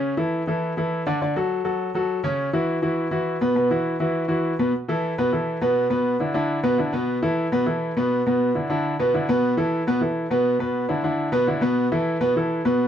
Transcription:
X:1
M:4/4
L:1/8
Q:1/4=204
K:A
V:1 name="Grand piano"
[C,Cc] [E,EA]2 [E,EA]2 [E,EA]2 [D,Dd] | [D,Dd] [F,FA]2 [F,FA]2 [F,FA]2 [C,Cc]- | [C,Cc] [E,EF]2 [E,EF]2 [E,EF]2 [B,,B,B] | [B,,B,B] [E,EF]2 [E,EF]2 [E,EF]2 [B,,B,B] |
z [E,EA]2 [B,,B,B] [E,EA]2 [B,,B,B]2 | [B,,B,B]2 [D,DE] [D,DE]2 [B,,B,B] [D,DE] [B,,B,B]- | [B,,B,B] [E,EA]2 [B,,B,B] [E,EA]2 [B,,B,B]2 | [B,,B,B]2 [D,DE] [D,DE]2 [B,,B,B] [D,DE] [B,,B,B]- |
[B,,B,B] [E,EA]2 [B,,B,B] [E,EA]2 [B,,B,B]2 | [B,,B,B]2 [D,DE] [D,DE]2 [B,,B,B] [D,DE] [B,,B,B]- | [B,,B,B] [E,EA]2 [B,,B,B] [E,EA]2 [B,,B,B]2 |]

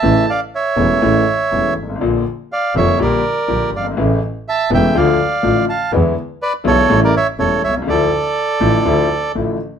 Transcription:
X:1
M:4/4
L:1/16
Q:1/4=122
K:Dm
V:1 name="Bandoneon"
[ea]2 [df]2 [^ce]8- [ce]2 z2 | z4 [df]2 [^ce]2 [Bd]6 [df]2 | z4 [ea]2 [eg]2 [df]6 [fa]2 | z4 [=Bd]2 [A^c]3 [_Bd] [ce]2 [Ac]2 [ce]2 |
[Ad]12 z4 |]
V:2 name="Upright piano" clef=bass
[A,,,A,,^C,E,A,E]2 z4 [E,,,E,,C,E,A,E]2 [A,,,A,,C,E,A,E]2 z2 [E,,,E,,C,E,A,E]2 z/2 G,,,/2 ^G,,,/2 A,,,/2 | [B,,,B,,D,F,B,F]2 z4 [F,,,F,,D,F,B,F]2 [B,,,B,,D,G,B,G]2 z2 [B,,,B,,D,G,B,G]2 z/2 ^F,,,/2 G,,,/2 ^G,,,/2 | [A,,,A,,^C,E,A,E]2 z4 [E,,,E,,C,E,A,E]2 [D,,D,F,A,F]2 z2 [A,,,A,,D,F,A,F]2 z2 | [E,,D,E,^G,=B,E]2 z4 [=B,,,=B,,D,G,B,E]2 [A,,,A,,^C,=G,A,E]2 z2 [E,,,E,,C,G,A,E]2 z/2 B,,,/2 =C,,/2 ^C,,/2 |
[D,,D,F,A,E]2 z4 [A,,,A,,D,F,A,E]2 [D,,D,F,A,E]2 z2 [A,,,A,,D,F,A,E]2 z2 |]
V:3 name="Double bass" clef=bass
A,,,2 z4 E,,,2 A,,,2 z2 E,,,2 ^G,,,2 | B,,,2 z4 F,,,2 B,,,2 z2 B,,,2 G,,,2 | A,,,2 z4 E,,,2 D,,2 z2 A,,,2 z2 | E,,2 z4 =B,,,2 A,,,2 z2 E,,,2 C,,2 |
D,,2 z4 A,,,2 D,,2 z2 A,,,2 z2 |]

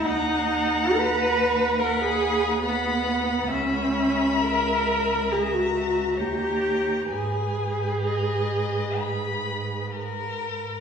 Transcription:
X:1
M:4/4
L:1/16
Q:1/4=66
K:G#m
V:1 name="Violin"
a8 b4 b4 | b8 a4 a4 | g4 d4 b4 A4 |]
V:2 name="Violin"
f8 f4 f4 | e8 e4 c4 | B12- B3 z |]
V:3 name="Viola"
D4 B4 A G3 B,4 | C4 A4 G F3 =G4 | G12 z4 |]
V:4 name="Cello" clef=bass
D,,16 | C,,12 D,,4 | G,,12- G,,3 z |]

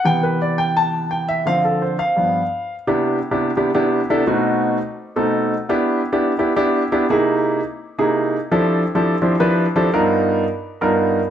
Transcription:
X:1
M:4/4
L:1/16
Q:1/4=170
K:C
V:1 name="Grand piano"
g2 B2 d2 g2 a4 g2 e2 | f2 A2 c2 f8- f z | [C,B,DEG]4 z [C,B,DEG]2 z [C,B,DEG] z [C,B,DEG]3 z [C,B,DEA] z | [B,,A,C^D^F]6 z4 [B,,A,CDA]4 z2 |
[B,DEG]4 z [B,DEG]2 z [B,DEG] z [B,DEG]3 z [B,DEG] z | [C,_B,^DE^G]6 z4 [C,B,DEG]4 z2 | [F,CDEGA]4 z [F,CDEGA]2 z [F,CDEGc] z [F,CDEGB]3 z [F,CDEGA] z | [G,,B,^DF^A]6 z4 [G,,B,DFA]4 z2 |]
V:2 name="Grand piano" clef=bass
[C,E,B,]16 | [D,F,C]6 z2 [G,,F,B,]2 z6 | z16 | z16 |
z16 | z16 | z16 | z16 |]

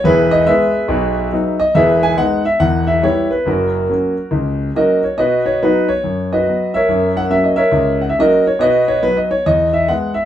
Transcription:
X:1
M:4/4
L:1/16
Q:"Swing" 1/4=140
K:B
V:1 name="Grand piano"
[EGB]2 d2 [GBe]8- [GBe]2 d2 | [GBe]2 g2 f2 e2 f2 e2 [E=Gc]2 B2 | [CFA]12 [FAd]2 c2 | [FBd]2 c2 [DFB]2 c4 [FBd]4 [Ace]2- |
[Ace]2 f2 e d [Ace]4 f e [FAd]2 c2 | [FBd]2 c2 B d c2 d2 e2 f2 e2 |]
V:2 name="Grand piano" clef=bass
[E,,,E,,]4 [G,B,]4 [B,,,B,,]4 [F,B,D]4 | [E,,,E,,]4 [G,B,D]4 [E,,,E,,]4 [=G,B,]4 | [F,,,F,,]4 [F,A,C]4 [C,,C,]4 [F,A,C]4 | B,,4 [F,B,]4 F,,4 [F,B,]4 |
F,,4 [F,A,C]4 C,,4 [F,A,C]4 | B,,4 [F,B,]4 E,,4 [G,B,]4 |]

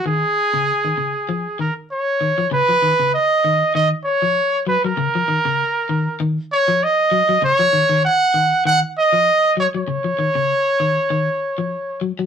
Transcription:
X:1
M:4/4
L:1/16
Q:"Swing 16ths" 1/4=98
K:C#mix
V:1 name="Trumpet"
G8- G2 A2 c4 | B4 d4 d2 c4 B A- | A8 z2 c2 d4 | c4 f4 f2 d4 c c- |
c12- c2 z2 |]
V:2 name="Clean electric guitar" clef=bass
D,2 z C,2 D, C,2 E,2 D, z3 D, E, | C, E, D, C,2 z D,2 D,2 z E,2 z F, F, | C, E, D, C,2 z D,2 D,2 z E,2 z F, F, | C, E, D, D,2 z D,2 D,2 z E,2 z F, F, |
C, E, D, C,2 z D,2 D,2 z E,2 z F, F, |]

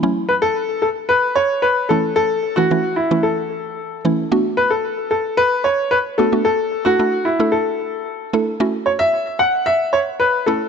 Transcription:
X:1
M:4/4
L:1/16
Q:1/4=112
K:F#m
V:1 name="Grand piano"
z2 B A3 A2 B2 c2 B2 A2 | A3 F3 E2 A6 z2 | z2 B A3 A2 B2 c2 B2 A2 | A3 F3 E2 A6 z2 |
z2 c e3 f2 e2 c2 B2 A2 |]
V:2 name="Synth pluck"
[F,A,CE]6 z8 [E,A,CE]2- | [E,A,CE]2 z [E,A,CE] [E,A,CE]2 z [E,A,CE]4- [E,A,CE] z2 [E,A,CE] z | [A,B,DF]6 z8 [A,B,DF] [A,B,DF] | z3 [A,DEA] [A,DEA]2 z [A,DEA]4- [A,DEA] z2 [A,DEA] z |
[A,CEF]6 z8 [A,CEA]2 |]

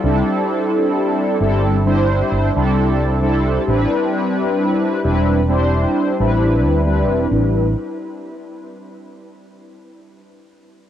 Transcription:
X:1
M:4/4
L:1/16
Q:"Swing 16ths" 1/4=66
K:Am
V:1 name="Analog polysynth"
[G,CDEA]6 [G,CDEA]2 [G,CDEc]3 [G,CDEA]3 [G,CDEA]2 | [G,CDEB]6 [G,CDEB]2 [G,CDEc]3 [G,CDEB]3 [G,CDEB]2 | [G,CDEB]2 z12 z2 |]
V:2 name="Fretless electric bass" clef=bass
C,, z4 z G,,,3 z G,,, C,,4 z | A,,, z4 z E,,,3 z2 A,,,2 D,,2 E,,, | A,,,2 z12 z2 |]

